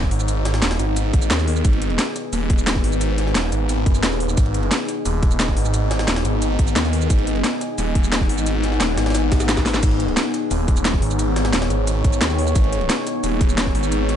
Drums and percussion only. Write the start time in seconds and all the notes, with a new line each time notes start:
0.03 kick, snare
0.11 open hi-hat, ride
0.20 shaker
0.28 closed hi-hat, ride, shaker
0.45 snare, closed hi-hat, ride
0.54 snare, ride
0.62 snare, closed hi-hat, ride, shaker
0.71 snare, ride
0.79 closed hi-hat, ride, shaker
0.96 closed hi-hat, ride, shaker
1.13 kick, closed hi-hat, ride
1.22 shaker
1.30 snare, closed hi-hat, ride, shaker
1.39 snare, shaker
1.48 open hi-hat, ride
1.56 shaker
1.65 kick, closed hi-hat, ride, shaker
1.73 ride
1.82 closed hi-hat, ride
1.90 ride
1.99 snare, closed hi-hat, ride, shaker
2.16 snare, closed hi-hat, ride, shaker
2.33 closed hi-hat, open hi-hat, shaker
2.50 kick, closed hi-hat, ride
2.58 shaker
2.67 snare, closed hi-hat, ride, shaker
2.75 kick, snare
2.84 open hi-hat, ride
2.92 shaker
3.01 closed hi-hat, ride, shaker
3.18 snare, closed hi-hat, ride
3.27 snare
3.35 snare, closed hi-hat, ride, shaker
3.52 closed hi-hat, ride, shaker
3.69 closed hi-hat, ride, shaker
3.86 kick, closed hi-hat, ride
3.95 shaker
4.03 snare, closed hi-hat, ride, shaker
4.12 snare, shaker
4.20 open hi-hat, ride
4.29 shaker
4.37 kick, closed hi-hat, ride, shaker
4.46 ride
4.54 closed hi-hat, ride
4.63 ride
4.71 snare, closed hi-hat, ride, shaker
4.88 snare, closed hi-hat, ride, shaker
5.06 closed hi-hat, open hi-hat, shaker
5.23 kick, closed hi-hat, ride
5.31 shaker
5.40 snare, closed hi-hat, ride, shaker
5.48 kick, snare
5.57 open hi-hat, ride
5.65 shaker
5.74 closed hi-hat, ride, shaker
5.91 snare, closed hi-hat, ride
5.99 snare, ride
6.08 snare, closed hi-hat, ride, shaker
6.16 snare, ride
6.25 closed hi-hat, ride, shaker
6.42 closed hi-hat, ride, shaker
6.59 kick, closed hi-hat, ride
6.67 shaker
6.76 snare, closed hi-hat, ride, shaker
6.84 snare, shaker
6.93 open hi-hat, ride
7.02 shaker
7.10 kick, closed hi-hat, ride, shaker
7.19 ride
7.27 closed hi-hat, ride
7.36 ride
7.44 snare, closed hi-hat, ride, shaker
7.61 snare, closed hi-hat, ride, shaker
7.78 closed hi-hat, open hi-hat, shaker
7.95 kick, closed hi-hat, ride
8.04 shaker
8.12 snare, closed hi-hat, ride, shaker
8.21 kick, snare
8.29 open hi-hat, ride
8.38 shaker
8.46 closed hi-hat, ride, shaker
8.63 snare, closed hi-hat, ride
8.72 snare
8.80 snare, closed hi-hat, ride, shaker
8.98 snare, closed hi-hat, ride, shaker
9.06 snare, ride
9.10 snare, ride
9.15 snare, closed hi-hat, ride, shaker
9.32 kick, snare, closed hi-hat, ride, shaker
9.40 snare, ride, shaker
9.49 snare, closed hi-hat, ride, shaker
9.57 kick, snare, ride, shaker
9.66 snare, open hi-hat, shaker
9.74 snare, ride, shaker
9.83 kick, closed hi-hat, crash, ride, shaker
9.91 ride
10.00 closed hi-hat, ride
10.08 ride
10.17 snare, closed hi-hat, ride, shaker
10.34 snare, closed hi-hat, ride, shaker
10.51 closed hi-hat, open hi-hat, shaker
10.68 kick, closed hi-hat, ride
10.77 shaker
10.85 snare, closed hi-hat, ride, shaker
10.94 kick, snare
11.02 open hi-hat, ride
11.11 shaker
11.19 closed hi-hat, ride, shaker
11.36 snare, closed hi-hat, ride
11.45 snare, ride
11.53 snare, closed hi-hat, ride, shaker
11.62 snare, ride
11.70 closed hi-hat, ride, shaker
11.87 closed hi-hat, ride, shaker
12.04 kick, closed hi-hat, ride
12.13 shaker
12.21 snare, closed hi-hat, ride, shaker
12.30 snare, shaker
12.38 open hi-hat, ride
12.47 shaker
12.55 kick, closed hi-hat, ride, shaker
12.64 ride
12.73 closed hi-hat, ride
12.81 ride
12.90 snare, closed hi-hat, ride, shaker
13.07 snare, closed hi-hat, ride, shaker
13.24 closed hi-hat, open hi-hat, shaker
13.41 kick, closed hi-hat, ride
13.49 shaker
13.58 snare, closed hi-hat, ride, shaker
13.66 kick, snare
13.75 open hi-hat, ride
13.83 shaker
13.92 closed hi-hat, ride, shaker
14.09 snare, closed hi-hat, ride